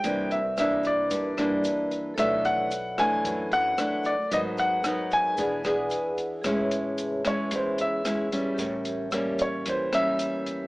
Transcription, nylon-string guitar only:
\new Staff \with { instrumentName = "Nylon-string guitar" } { \time 4/4 \key e \mixolydian \tempo 4 = 112 << { <e bes d'>8 r8 <e bes d'>4. <e bes d'>4. | <e a d'>4 r8 <e a d'>4. <e a d'>8 r8 | <fis b dis'>4 <fis b dis'>4 <b d' gis'>8 <b d' gis'>4. | \key a \major <gis cis' e'>4. <gis cis' e'>4. <gis cis' e'>8 <g cis'>8~ |
<g cis'>4 <g bes cis'>4. <g bes cis'>4. | } \\ { c2 g,2 | b,2 fis,2 | gis,2 e2 | a,2 e2 |
a,2 e2 | } >> }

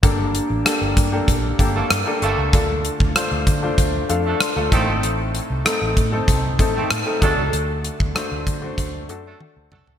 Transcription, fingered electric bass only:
\new Staff \with { instrumentName = "Fingered electric bass" } { \clef bass \time 4/4 \key g \minor \tempo 4 = 96 g,,8. a,,16 r16 g,,16 g,8 bes,,8 g,,8 g,16 r16 g,,16 cis,16 | d,8. d,16 r16 d,16 d8 d,8 f,8 r16 d,16 a,,16 aes,,16 | a,,8. c,16 r16 a,,16 a,8 c,8 a,,8 a,16 r16 d,16 cis,16 | d,8. d,16 r16 d,16 d8 d,8 fis,8 r16 d,16 c,16 cis,16 | }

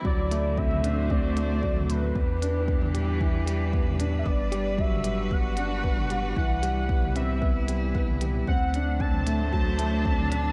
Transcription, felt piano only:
\new Staff \with { instrumentName = "Felt piano" } { \time 4/4 \key d \mixolydian \tempo 4 = 114 fis8 a8 c'8 d'8 c'8 a8 fis8 a8 | b8 d'8 b8 g8 e8 g8 b8 d'8 | b8 g8 fis8 g8 b8 d'8 b8 g8 | e8 g8 b8 c'8 b8 g8 b8 g8 |
c'8 d'8 c'8 a8 fis8 a8 c'8 d'8 | }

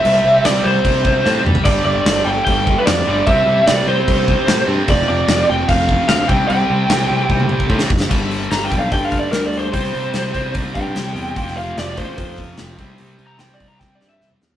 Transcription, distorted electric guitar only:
\new Staff \with { instrumentName = "Distorted electric guitar" } { \clef bass \time 4/4 \key c \major \tempo 4 = 148 <c g c'>2. <c g c'>8 r8 | <g, d g>2.~ <g, d g>8 <g, d g>8 | <c g c'>2.~ <c g c'>8 <c g c'>8 | <f, c f>2.~ <f, c f>8 <c g c'>8~ |
<c g c'>2. <c g c'>8 r8 | <g, d g>4. <g, d g>2~ <g, d g>8 | <c g c'>4. <c g c'>2~ <c g c'>8 | <f, c f>4. <f, c f>2 <c g c'>8~ |
<c g c'>4 <c g c'>2~ <c g c'>8 r8 | }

